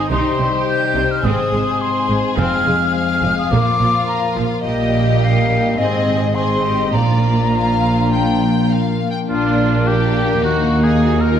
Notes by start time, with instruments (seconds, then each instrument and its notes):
Already playing: harp G#2 D#3 G#3 D#4 G#4 C5, viola section D#4, violin section G#4 C5, flute D#6
0.10 double bass section C2, harp C3, cello section C3, french horn section G3 D#4, viola section D#4, violin section G4 C5, flute C6
0.30 harp G3
0.39 double bass section C2, cello section C3, viola section C4
0.49 harp C5
0.68 harp G4, flute G6
0.86 harp C5
0.95 double bass section C2, cello section C3, viola section C4
1.05 harp D#4
1.11 flute F6
1.24 double bass section G#1, harp G#2, cello section G#2, french horn section G#3 C4, viola section C4, violin section G#4, flute D#6
1.42 harp G#3
1.52 double bass section G#1, cello section G#2, viola section G#3
1.62 harp C5
1.81 harp G#4, flute C6
2.00 harp C5
2.09 double bass section G#1, cello section G#2, viola section G#3
2.19 harp C4
2.37 double bass section F1, harp F2, cello section F2, viola section C4, violin section F5, flute F6
2.56 harp G#3
2.67 double bass section F1, cello section F2, viola section G#3
2.74 harp C5
2.94 harp G#4, flute F6
3.13 harp C5
3.22 double bass section F1, cello section F2, viola section G#3
3.32 harp F4
3.39 flute D#6
3.50 double bass section A#1, harp A#2, cello section A#2, french horn section F3 A#3, viola section A#3, violin section F4, flute D6
3.70 harp A#3
3.80 double bass section A#1, cello section A#2, viola section F3
3.89 harp A#4
4.08 harp F4, flute A#5
4.26 harp A#4
4.36 double bass section A#1, cello section A#2, viola section F3
4.45 harp F4
4.64 double bass section A#1, harp A#2, cello section A#2, french horn section G3, viola section A#3, violin section G4 D#5, flute D#5
4.83 harp A#3
5.02 harp G4
5.21 harp A#4, flute F5
5.41 harp G4
5.60 harp D#4
5.78 double bass section G#1, cello section G#2, harp G#2, french horn section G#3 C4, viola section C4, violin section G#4 D#5, flute D#5
5.98 harp C4
6.17 harp G#4
6.35 viola section C4, violin section G#4 D#5, harp C5, flute C6
6.55 harp G#4
6.65 violin section G4
6.75 harp D#4
6.92 double bass section A#1, cello section A#2, harp A#2, french horn section F3 D4, viola section A#3, violin section F4 D5, flute A#5
7.14 harp A#3
7.33 harp F4
7.52 harp A#4, violin section F5
7.72 harp F4
7.93 harp D4
8.12 harp F3, violin section G5
8.32 harp A#3
8.52 harp F4
8.72 harp A#4, violin section F5
8.91 harp F4
9.11 harp D4, violin section G5
9.28 double bass section A#1, cello section A#2, harp A#2, trombone section F3 A#3, violin section A#3 D4 F4, french horn section A#3 D4, viola section D4, oboe F4
9.50 harp A#3
9.69 harp A#4
9.87 viola section A#3, harp D4, oboe G4, violin section G4
10.07 harp A#4
10.26 harp D4
10.43 double bass section D#2, cello section D#2, trombone section D#3, harp D#3, french horn section D#4, violin section D#4 F#4, oboe F#4
10.63 harp D#4
10.82 violin section G#4, oboe G#4, harp A#4
11.02 viola section F#4, harp D#5
11.20 harp A#4, oboe A#4, violin section A#4
11.31 viola section F4